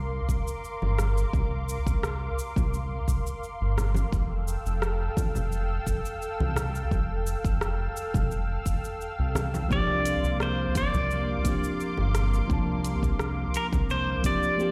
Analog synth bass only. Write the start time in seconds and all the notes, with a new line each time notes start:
Already playing: C2
0.29 C2
0.82 G1
1.33 C2
1.86 C2
2.56 C2
3.08 C2
3.61 G1
4.12 F1
4.66 F1
5.35 F1
5.87 F1
6.40 C2
6.91 F1
7.44 F1
8.14 F1
8.66 F1
9.19 C2
9.71 C2
10.24 C2
10.93 C2
11.45 C2
11.98 G1
12.50 C2
13.03 C2
13.73 C2
14.24 C2